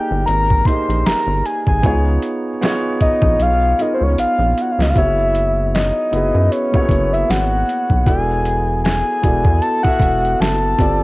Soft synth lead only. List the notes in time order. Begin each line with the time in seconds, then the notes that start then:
Already playing: G5
0.26 A#5
0.66 C6
1.06 A#5
1.46 G#5
1.68 G#5
3.02 D#5
3.42 F5
3.81 D#5
3.94 C5
4.03 C#5
4.20 F5
4.61 F#5
4.71 F5
4.82 D#5
4.90 F5
4.97 E5
5.74 D#5
6.52 C#5
7.13 E5
7.30 F#5
8.07 G#5
8.84 G#5
9.62 A5
9.83 F#5
10.40 A5